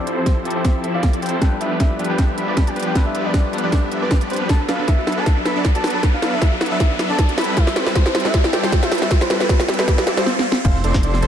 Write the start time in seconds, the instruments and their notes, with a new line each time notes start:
Already playing: tine electric piano F3 C4 E4 G4 A4, riser
0.07 supersaw synth F3 C4 E4 A4 C5, closed hi-hat
0.17 supersaw synth F3 C4 E4 A4 C5, soft synth lead C5
0.26 kick, snare, closed hi-hat
0.43 tine electric piano F3 C4 E4 G4, supersaw synth F3 C4 E4 A4 C5, closed hi-hat
0.47 tine electric piano A4, closed hi-hat
0.56 supersaw synth F3 C4 E4 A4 C5, soft synth lead C5
0.64 supersaw synth F3 C4 E4 A4 E5, kick, snare, closed hi-hat
0.84 supersaw synth F3 C4 E4 A4 E5, closed hi-hat
0.94 supersaw synth F3 C4 E4 A4 D5, soft synth lead F5
1.03 kick, snare, closed hi-hat
1.13 supersaw synth F3 C4 E4 A4 D5, closed hi-hat
1.22 supersaw synth F3 C4 E4 A4 C5, soft synth lead G5, closed hi-hat
1.26 closed hi-hat
1.29 closed hi-hat
1.39 supersaw synth F3 G4 B4, tine electric piano G3 D4 F4 A4, soft synth lead G5, kick, snare, closed hi-hat
1.43 tine electric piano B4
1.61 supersaw synth F3 B3 D4 G4 B4, soft synth lead E5, closed hi-hat
1.71 supersaw synth F3 B3 D4 G4 B4
1.80 supersaw synth F3 B3 D4 G4 B4, soft synth lead E5, kick, snare, closed hi-hat
1.97 supersaw synth F3 B3 D4 G4 B4, tine electric piano G3 D4 F4 A4, closed hi-hat
2.01 tine electric piano B4, closed hi-hat
2.10 supersaw synth F3 B3 D4 G4 B4, soft synth lead G5
2.18 supersaw synth F3 B3 D4 G4 E5, kick, snare, closed hi-hat
2.38 supersaw synth F3 B3 D4 G4 E5, soft synth lead B5, closed hi-hat
2.48 supersaw synth F3 B3 D4 G4 D5
2.57 kick, snare, closed hi-hat
2.67 supersaw synth F3 B3 D4 G4 D5, soft synth lead G5, closed hi-hat
2.76 supersaw synth F3 B3 D4 G4 B4, closed hi-hat
2.80 closed hi-hat
2.83 closed hi-hat
2.87 soft synth lead G5
2.93 supersaw synth F3 B3 D4 G4 B4, tine electric piano G3 D4 F4 A4 B4, kick, snare, closed hi-hat
3.06 soft synth lead E5
3.15 supersaw synth F3 B3 D4 G4 B4, closed hi-hat
3.25 supersaw synth F3 B3 D4 G4 B4, soft synth lead D5
3.34 supersaw synth F3 B3 D4 G4 B4, kick, snare, closed hi-hat
3.51 supersaw synth F3 B3 D4 G4 B4, tine electric piano G3 D4 F4 A4 B4, closed hi-hat
3.58 closed hi-hat
3.64 supersaw synth F3 B3 D4 G4 B4, soft synth lead D5
3.72 supersaw synth F3 B3 E5, kick, snare, closed hi-hat
3.91 supersaw synth F3 B3 D4 G4 E5, closed hi-hat
4.02 supersaw synth F3 B3 D4 G4 D5, soft synth lead B4
4.11 kick, snare, closed hi-hat
4.21 supersaw synth F3 B3 D4 G4 D5, closed hi-hat
4.30 supersaw synth F3 B3 D4 G4 B4, soft synth lead C5, closed hi-hat
4.33 closed hi-hat
4.36 closed hi-hat
4.49 supersaw synth F#3 D4 A4 B4, soft synth lead A5, kick, snare, closed hi-hat
4.60 synth arpeggio sound D4
4.68 supersaw synth F#3 B3 D4 A4 B4, synth arpeggio sound B4, soft synth lead F5, snare, closed hi-hat
4.79 supersaw synth F#3 B3 D4 A4 B4, synth arpeggio sound D4
4.88 supersaw synth F#3 B3 D4 A4 B4, soft synth lead E5, kick, snare, closed hi-hat
4.98 synth arpeggio sound F#4
5.07 supersaw synth F#3 B3 D4 A4 B4, synth arpeggio sound F#5, snare, closed hi-hat
5.12 closed hi-hat
5.18 supersaw synth F#3 B3 D4 A4 B4, synth arpeggio sound A4, soft synth lead A5
5.26 supersaw synth F#3 B3 A4 E5, kick, snare, closed hi-hat
5.37 synth arpeggio sound D4
5.45 supersaw synth F#3 B3 D4 A4 E5, synth arpeggio sound B4, soft synth lead B5, snare, closed hi-hat
5.56 supersaw synth F#3 B3 D4 A4 D5, synth arpeggio sound D4
5.65 kick, snare, closed hi-hat
5.75 supersaw synth F#3 B3 D4 A4 D5, synth arpeggio sound F#4, soft synth lead A5, closed hi-hat
5.84 supersaw synth F#3 B3 D4 A4 B4, synth arpeggio sound F#5, snare, closed hi-hat, open hi-hat
5.90 closed hi-hat
5.94 synth arpeggio sound A4, soft synth lead A5
6.03 supersaw synth F#3 B3 D4 A4 B4, kick, snare, closed hi-hat
6.14 synth arpeggio sound D4, soft synth lead F5
6.22 supersaw synth F#3 B3 D4 A4 B4, synth arpeggio sound B4, snare, closed hi-hat
6.33 supersaw synth F#3 B3 D4 A4 B4, synth arpeggio sound D4, soft synth lead E5
6.42 supersaw synth F#3 B3 D4 B4, kick, snare, closed hi-hat
6.52 synth arpeggio sound F#4
6.61 supersaw synth F#3 B3 D4 A4 B4, synth arpeggio sound F#5, snare, closed hi-hat
6.66 closed hi-hat
6.71 supersaw synth F#3 B3 D4 A4 B4, synth arpeggio sound A4, soft synth lead E5
6.80 supersaw synth F#3 B3 D4 A4, kick, snare, closed hi-hat
6.90 synth arpeggio sound D4
6.99 supersaw synth F#3 B3 D4 A4 E5, synth arpeggio sound B4, snare, closed hi-hat
7.10 supersaw synth F#3 B3 D4 A4 D5, synth arpeggio sound D4, soft synth lead A5
7.19 kick, snare, closed hi-hat
7.29 supersaw synth F#3 B3 D4 A4 D5, synth arpeggio sound F#4, closed hi-hat
7.38 supersaw synth G3 C4 E4 A4 B4, synth arpeggio sound E5, soft synth lead B5, snare, closed hi-hat, open hi-hat
7.44 closed hi-hat
7.48 synth arpeggio sound A4
7.57 supersaw synth G3 C4 E4 A4 B4, soft synth lead E5, kick, snare, closed hi-hat
7.67 synth arpeggio sound E4, snare
7.76 supersaw synth G3 C4 E4 A4 B4, synth arpeggio sound B4, soft synth lead C5, snare, closed hi-hat
7.86 supersaw synth G3 C4 E4 A4 B4, synth arpeggio sound E4, snare
7.95 supersaw synth G3 C4 E4 A4 B4, soft synth lead C5, kick, snare, closed hi-hat
8.06 synth arpeggio sound G4, snare
8.15 supersaw synth G3 C4 E4 A4 B4, synth arpeggio sound E5, snare, closed hi-hat
8.20 closed hi-hat
8.25 supersaw synth G3 C4 E4 A4 B4, synth arpeggio sound A4, soft synth lead E5, snare
8.34 supersaw synth G3 D5, kick, snare, closed hi-hat
8.44 synth arpeggio sound E4, snare
8.53 supersaw synth G3 C4 E4 A4 D5, synth arpeggio sound B4, soft synth lead G5, snare, closed hi-hat
8.63 supersaw synth G3 C4 E4 A4 C5, synth arpeggio sound E4, snare
8.72 kick, snare, closed hi-hat
8.83 supersaw synth G3 C4 E4 A4 C5, synth arpeggio sound G4, soft synth lead E5, snare, closed hi-hat
8.92 supersaw synth G3 C4 E4 A4 B4, synth arpeggio sound E5, snare, closed hi-hat, open hi-hat
8.98 closed hi-hat
9.02 synth arpeggio sound A4, soft synth lead E5, snare
9.11 supersaw synth G3 C4 E4 A4, kick, snare, closed hi-hat
9.21 synth arpeggio sound E4, soft synth lead C5, snare
9.30 supersaw synth G3 C4 E4 A4 B4, synth arpeggio sound B4, snare, closed hi-hat
9.40 supersaw synth G3 C4 E4 A4 B4, synth arpeggio sound E4, soft synth lead B4, snare
9.49 supersaw synth G3 C4 E4 A4 B4, kick, snare, closed hi-hat
9.60 synth arpeggio sound G4, snare
9.68 supersaw synth G3 C4 E4 A4 B4, synth arpeggio sound E5, snare, closed hi-hat
9.74 closed hi-hat
9.79 supersaw synth G3 C4 E4 A4 B4, synth arpeggio sound A4, soft synth lead B4, snare
9.88 supersaw synth G3 C4 E4 A4, kick, snare, closed hi-hat, swell
9.98 synth arpeggio sound E4, snare
10.07 supersaw synth G3 C4 E4 A4 D5, synth arpeggio sound E5, snare, closed hi-hat
10.17 supersaw synth G3 C4 E4 A4 C5, synth arpeggio sound B4, soft synth lead C5, snare
10.26 snare
10.39 snare
10.52 snare
10.65 detuned saw bass F1, supersaw synth F3 C4 E4 A4 C5, synth arpeggio sound E4, soft synth lead F5, digital synth lead C6, kick, closed hi-hat, crash
10.84 detuned saw bass F1, supersaw synth F3 C4 E4 A4 C5, synth arpeggio sound A4, soft synth lead D5, digital synth lead C6, closed hi-hat
10.94 detuned saw bass F1, supersaw synth F3, synth arpeggio sound E4, digital synth lead C6, kick, snare
11.03 detuned saw bass F1, supersaw synth F3 C4 E4 A4 C5, synth arpeggio sound A4, soft synth lead D5, digital synth lead C6, closed hi-hat
11.14 snare
11.22 detuned saw bass F1, supersaw synth F3 C4 E4 A4 C5, synth arpeggio sound A5, digital synth lead C6, closed hi-hat